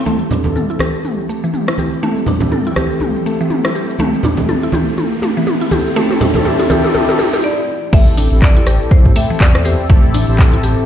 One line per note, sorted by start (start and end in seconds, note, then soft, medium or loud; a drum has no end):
0.06 7.40 E3 medium
0.06 7.40 A3 medium
0.06 0.19 A3 loud
0.06 7.40 C4 medium
0.06 0.42 C4 medium
0.06 0.42 E4 medium
0.06 7.40 G4 medium
0.06 0.42 G4 medium
0.06 0.42 A4 medium
0.06 mid tom soft
0.06 riser medium
0.06 high conga medium
0.06 cabasa medium
0.22 cabasa soft
0.31 0.39 D4 medium
0.31 low conga loud
0.31 cabasa medium
0.44 2.00 C4 medium
0.44 2.00 E4 medium
0.44 2.00 G4 medium
0.44 2.00 A4 medium
0.44 high conga medium
0.44 low conga medium
0.44 cabasa soft
0.56 0.68 A4 medium
0.56 mid tom medium
0.56 cabasa medium
0.70 0.79 E4 medium
0.70 cabasa soft
0.79 0.93 G4 medium
0.79 cross-stick medium
0.79 high conga loud
0.79 cabasa medium
0.95 cabasa soft
1.05 mid tom medium
1.05 cabasa medium
1.20 cabasa soft
1.29 1.37 A3 medium
1.29 cabasa medium
1.44 1.53 E3 medium
1.44 cabasa soft
1.54 mid tom medium
1.54 cabasa medium
1.68 1.77 E4 medium
1.68 cross-stick medium
1.68 cabasa soft
1.78 1.91 G4 medium
1.78 high conga medium
1.78 cabasa medium
1.93 cabasa soft
2.02 2.16 A3 loud
2.02 2.38 C4 medium
2.02 2.38 E4 medium
2.02 2.38 G4 medium
2.02 2.38 A4 medium
2.02 mid tom medium
2.02 cabasa medium
2.18 cabasa soft
2.26 2.35 D4 medium
2.26 low conga loud
2.26 cabasa loud
2.40 3.23 C4 medium
2.40 3.23 E4 medium
2.40 3.23 G4 medium
2.40 3.23 A4 loud
2.40 high conga medium
2.40 low conga loud
2.40 cabasa soft
2.52 2.65 A4 medium
2.52 mid tom medium
2.52 cabasa medium
2.67 2.76 E4 medium
2.67 cabasa soft
2.76 2.90 G4 medium
2.76 cross-stick medium
2.76 high conga loud
2.76 cabasa medium
2.91 cabasa soft
3.00 mid tom medium
3.00 high conga medium
3.00 cabasa medium
3.16 cabasa soft
3.25 3.34 A3 medium
3.25 3.97 C4 medium
3.25 3.97 E4 medium
3.25 3.97 G4 medium
3.25 3.97 A4 medium
3.25 cabasa medium
3.41 3.50 E3 medium
3.41 cabasa soft
3.50 mid tom medium
3.50 cabasa medium
3.65 3.74 E4 medium
3.65 cross-stick medium
3.65 cabasa soft
3.75 3.88 G4 medium
3.75 cabasa medium
3.90 cabasa soft
3.99 4.12 A3 loud
3.99 4.35 C4 medium
3.99 4.35 E4 medium
3.99 4.35 G4 medium
3.99 4.35 A4 medium
3.99 mid tom medium
3.99 high conga medium
3.99 cabasa medium
4.14 cabasa soft
4.23 4.32 D4 medium
4.23 mid tom medium
4.23 low conga loud
4.23 cabasa medium
4.37 5.94 C4 medium
4.37 5.94 E4 medium
4.37 5.94 G4 medium
4.37 5.94 A4 medium
4.37 high conga loud
4.37 low conga loud
4.37 cabasa soft
4.49 4.62 A4 medium
4.49 mid tom medium
4.49 cabasa medium
4.63 4.72 E4 medium
4.63 cabasa soft
4.72 4.86 G4 medium
4.72 mid tom medium
4.72 high conga loud
4.72 cabasa loud
4.88 cabasa soft
4.98 mid tom medium
4.98 cabasa medium
5.13 cabasa soft
5.22 5.30 A3 medium
5.22 mid tom medium
5.22 cabasa loud
5.37 5.47 E3 medium
5.37 cabasa soft
5.47 mid tom medium
5.47 cabasa medium
5.61 5.71 E4 medium
5.61 cabasa soft
5.71 5.85 G4 medium
5.71 mid tom medium
5.71 high conga medium
5.71 cabasa loud
5.87 cabasa soft
5.96 6.09 A3 loud
5.96 6.32 C4 medium
5.96 6.32 E4 medium
5.96 6.32 G4 medium
5.96 6.32 A4 medium
5.96 mid tom medium
5.96 cabasa medium
6.11 mid tom medium
6.11 cabasa soft
6.21 6.29 D4 medium
6.21 mid tom medium
6.21 low conga loud
6.21 cabasa medium
6.34 7.17 C4 medium
6.34 7.17 E4 medium
6.34 7.17 G4 medium
6.34 7.17 A4 loud
6.34 mid tom medium
6.34 high conga loud
6.34 low conga loud
6.34 cabasa soft
6.45 6.58 A4 medium
6.45 mid tom medium
6.45 cabasa medium
6.60 6.69 E4 medium
6.60 mid tom medium
6.60 cabasa soft
6.70 6.83 G4 medium
6.70 mid tom loud
6.70 high conga loud
6.70 cabasa loud
6.84 mid tom medium
6.84 cabasa soft
6.95 mid tom loud
6.95 high conga medium
6.95 cabasa medium
7.09 mid tom medium
7.09 cabasa soft
7.19 7.32 G4 medium
7.19 mid tom loud
7.19 cabasa medium
7.33 7.43 G4 medium
7.33 mid tom medium
7.33 cabasa soft
7.44 7.94 D5 loud
7.93 8.28 A1 loud
7.93 10.86 E3 medium
7.93 8.06 A3 loud
7.93 10.86 A3 medium
7.93 10.86 C4 medium
7.93 8.28 C4 medium
7.93 8.28 E4 medium
7.93 8.28 G4 medium
7.93 10.86 G4 medium
7.93 8.28 A4 medium
7.93 8.44 E5 loud
7.93 kick loud
7.93 crash loud
7.93 cabasa medium
8.08 cabasa soft
8.17 8.25 D4 medium
8.17 open hi-hat loud
8.17 cabasa loud
8.32 8.64 A1 medium
8.32 9.87 C4 medium
8.32 9.87 E4 medium
8.32 9.87 G4 medium
8.32 9.87 A4 medium
8.32 cabasa soft
8.42 8.55 A4 medium
8.42 8.88 D5 loud
8.42 kick loud
8.42 clap loud
8.42 cabasa medium
8.57 8.66 E4 medium
8.57 cabasa soft
8.66 8.79 A1 medium
8.66 8.80 G4 medium
8.66 cross-stick medium
8.66 open hi-hat medium
8.66 cabasa loud
8.82 cabasa soft
8.91 9.17 C5 medium
8.91 kick loud
8.91 cabasa medium
9.05 9.14 A2 loud
9.05 kick medium
9.05 cabasa soft
9.16 9.24 A3 medium
9.16 9.41 E5 loud
9.16 open hi-hat medium
9.16 cabasa medium
9.30 9.40 E3 medium
9.30 cabasa soft
9.40 9.76 E2 medium
9.40 9.66 D5 loud
9.40 kick loud
9.40 clap loud
9.40 cabasa medium
9.55 9.64 E4 medium
9.55 cross-stick loud
9.55 cabasa soft
9.65 9.78 G4 medium
9.65 10.59 C5 medium
9.65 open hi-hat medium
9.65 cabasa medium
9.80 cabasa soft
9.90 10.25 A1 loud
9.90 10.02 A3 loud
9.90 10.25 C4 medium
9.90 10.25 E4 medium
9.90 10.25 G4 medium
9.90 10.25 A4 medium
9.90 kick loud
9.90 cabasa medium
10.05 cabasa soft
10.14 10.22 D4 medium
10.14 open hi-hat loud
10.14 cabasa medium
10.28 10.61 A1 medium
10.28 10.86 C4 medium
10.28 10.86 E4 medium
10.28 10.86 G4 medium
10.28 10.86 A4 loud
10.28 cabasa soft
10.39 10.52 A4 medium
10.39 kick loud
10.39 clap medium
10.39 cabasa medium
10.53 10.63 E4 medium
10.53 cabasa soft
10.63 10.75 A1 medium
10.63 10.76 G4 medium
10.63 open hi-hat medium
10.63 cabasa loud
10.78 cabasa soft